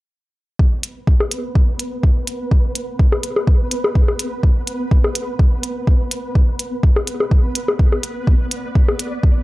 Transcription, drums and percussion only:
0.59 kick loud
0.83 closed hi-hat medium
1.07 kick loud
1.20 low bongo medium
1.31 closed hi-hat medium
1.55 kick loud
1.79 closed hi-hat medium
2.03 kick loud
2.27 closed hi-hat medium
2.51 kick loud
2.75 closed hi-hat medium
2.99 kick loud
3.12 low bongo medium
3.23 closed hi-hat medium
3.36 low bongo medium
3.47 kick loud
3.71 closed hi-hat medium
3.84 low bongo medium
3.95 kick loud
4.08 low bongo soft
4.19 closed hi-hat medium
4.43 kick loud
4.67 closed hi-hat medium
4.91 kick loud
5.04 low bongo medium
5.15 closed hi-hat medium
5.39 kick loud
5.63 closed hi-hat medium
5.87 kick loud
6.11 closed hi-hat medium
6.35 kick loud
6.59 closed hi-hat medium
6.83 kick loud
6.96 low bongo medium
7.07 closed hi-hat medium
7.20 low bongo medium
7.31 kick loud
7.55 closed hi-hat medium
7.68 low bongo medium
7.79 kick loud
7.92 low bongo medium
8.03 closed hi-hat medium
8.27 kick loud
8.51 closed hi-hat medium
8.75 kick loud
8.88 low bongo medium
8.99 closed hi-hat medium
9.23 kick loud

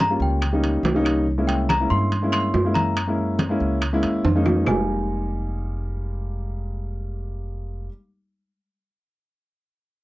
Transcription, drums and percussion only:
0.00 high conga medium
0.00 high timbale medium
0.00 low timbale medium
0.22 high conga soft
0.42 high conga soft
0.42 high timbale medium
0.42 claves medium
0.64 high conga soft
0.64 high timbale medium
0.85 high conga medium
0.85 high timbale medium
0.85 low timbale medium
1.05 high timbale medium
1.05 claves medium
1.28 high conga soft
1.48 high conga soft
1.48 high timbale medium
1.69 high conga medium
1.69 high timbale medium
1.69 low timbale medium
1.69 claves medium
1.92 high conga soft
2.12 high conga soft
2.12 high timbale medium
2.33 high conga soft
2.33 high timbale medium
2.33 claves medium
2.54 high conga soft
2.54 low timbale medium
2.75 high conga medium
2.75 high timbale medium
2.97 high conga soft
2.97 high timbale medium
2.97 claves medium
3.18 high conga soft
3.39 high conga medium
3.39 high timbale medium
3.39 low timbale medium
3.60 high conga soft
3.82 high conga soft
3.82 high timbale medium
3.82 claves medium
4.03 high conga soft
4.03 high timbale medium
4.25 high conga medium
4.25 high timbale medium
4.46 high conga medium
4.46 low timbale medium
4.46 claves medium
4.66 low conga medium
4.66 low timbale medium
4.66 claves medium

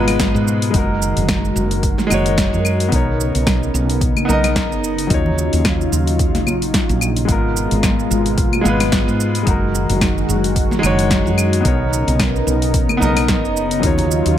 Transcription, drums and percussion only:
0.08 snare soft
0.08 open hi-hat soft
0.08 claves medium
0.08 shaker soft
0.19 kick medium
0.19 snare loud
0.19 open hi-hat medium
0.19 shaker soft
0.36 shaker soft
0.48 shaker medium
0.62 open hi-hat soft
0.62 shaker soft
0.74 kick medium
0.74 open hi-hat medium
0.74 shaker soft
1.02 shaker medium
1.17 open hi-hat soft
1.17 shaker soft
1.28 kick loud
1.28 snare loud
1.28 open hi-hat soft
1.28 claves medium
1.28 shaker soft
1.45 shaker soft
1.56 shaker medium
1.71 open hi-hat soft
1.71 shaker soft
1.83 kick loud
1.83 open hi-hat soft
1.83 shaker soft
1.98 snare soft
1.98 high conga medium
1.98 shaker soft
2.10 high conga medium
2.10 claves medium
2.10 shaker medium
2.26 open hi-hat soft
2.26 shaker soft
2.37 kick loud
2.37 snare loud
2.37 open hi-hat medium
2.37 shaker soft
2.54 shaker soft
2.65 claves medium
2.65 shaker medium
2.80 open hi-hat soft
2.80 shaker soft
2.92 kick loud
2.92 open hi-hat soft
2.92 shaker soft
3.20 shaker medium
3.35 open hi-hat soft
3.35 shaker soft
3.47 kick loud
3.47 snare loud
3.47 open hi-hat soft
3.47 claves medium
3.47 shaker soft
3.63 shaker soft
3.75 shaker medium
3.90 open hi-hat soft
3.90 shaker soft
4.01 kick loud
4.01 open hi-hat soft
4.01 shaker soft
4.17 high conga medium
4.17 claves medium
4.17 shaker soft
4.28 high conga medium
4.28 shaker medium
4.44 snare soft
4.44 open hi-hat soft
4.44 claves medium
4.44 shaker soft
4.56 kick medium
4.56 snare medium
4.56 open hi-hat soft
4.56 shaker soft
4.72 shaker soft
4.84 shaker medium
4.98 open hi-hat soft
4.98 shaker soft
5.10 kick loud
5.10 open hi-hat soft
5.10 shaker soft
5.26 low conga medium
5.38 shaker medium
5.53 open hi-hat soft
5.53 shaker soft
5.65 kick loud
5.65 snare medium
5.65 open hi-hat medium
5.65 claves medium
5.65 shaker soft
5.81 shaker soft
5.93 shaker medium
6.07 open hi-hat soft
6.07 shaker soft
6.19 kick loud
6.19 open hi-hat soft
6.19 shaker soft
6.35 snare soft
6.35 open hi-hat soft
6.35 high conga medium
6.35 shaker soft
6.47 high conga medium
6.47 claves medium
6.47 shaker medium
6.62 open hi-hat soft
6.62 shaker soft
6.74 kick loud
6.74 snare medium
6.74 open hi-hat soft
6.74 shaker soft
6.89 open hi-hat soft
6.89 shaker soft
7.01 claves medium
7.01 shaker medium
7.16 open hi-hat soft
7.16 shaker soft
7.28 kick medium
7.28 open hi-hat soft
7.28 shaker soft
7.57 shaker medium
7.71 open hi-hat soft
7.71 shaker soft
7.83 kick loud
7.83 snare medium
7.83 open hi-hat soft
7.83 claves medium
7.83 shaker soft
7.99 shaker soft
8.11 shaker medium
8.26 open hi-hat soft
8.26 shaker soft
8.38 kick loud
8.38 open hi-hat soft
8.38 shaker soft
8.53 high conga medium
8.53 claves medium
8.53 shaker soft
8.65 high conga medium
8.65 shaker medium
8.80 snare soft
8.80 open hi-hat soft
8.80 claves medium
8.80 shaker soft
8.92 kick medium
8.92 snare medium
8.92 open hi-hat medium
8.92 shaker soft
9.09 shaker soft
9.20 shaker medium
9.35 open hi-hat soft
9.35 shaker soft
9.47 kick medium
9.47 open hi-hat soft
9.47 shaker soft
9.75 shaker medium
9.90 open hi-hat soft
9.90 shaker soft
10.01 kick loud
10.01 snare medium
10.01 open hi-hat medium
10.01 claves medium
10.01 shaker soft
10.18 shaker soft
10.30 shaker medium
10.44 open hi-hat soft
10.44 shaker soft
10.56 kick loud
10.56 open hi-hat soft
10.56 shaker soft
10.71 snare soft
10.71 high conga medium
10.71 shaker soft
10.83 high conga medium
10.83 claves medium
10.83 shaker medium
10.99 open hi-hat soft
10.99 shaker soft
11.10 kick medium
11.10 snare medium
11.10 open hi-hat medium
11.10 shaker soft
11.27 shaker soft
11.38 claves medium
11.38 shaker medium
11.53 open hi-hat soft
11.53 shaker soft
11.65 kick medium
11.65 open hi-hat medium
11.65 shaker soft
11.93 shaker medium
12.08 open hi-hat soft
12.08 shaker soft
12.19 kick loud
12.19 snare medium
12.19 open hi-hat medium
12.19 claves medium
12.19 shaker soft
12.36 shaker soft
12.48 shaker medium
12.62 open hi-hat soft
12.62 shaker soft
12.74 kick loud
12.74 open hi-hat medium
12.74 shaker soft
12.89 high conga medium
12.89 claves medium
12.89 shaker soft
13.01 high conga medium
13.01 shaker medium
13.17 snare soft
13.17 open hi-hat soft
13.17 claves medium
13.17 shaker soft
13.28 kick medium
13.28 snare medium
13.28 open hi-hat medium
13.28 shaker soft
13.45 shaker soft
13.57 shaker medium
13.71 open hi-hat soft
13.71 shaker soft
13.83 kick medium
13.83 open hi-hat medium
13.83 shaker soft
13.98 open hi-hat soft
13.98 low conga medium
14.11 shaker medium
14.26 open hi-hat soft
14.26 shaker soft

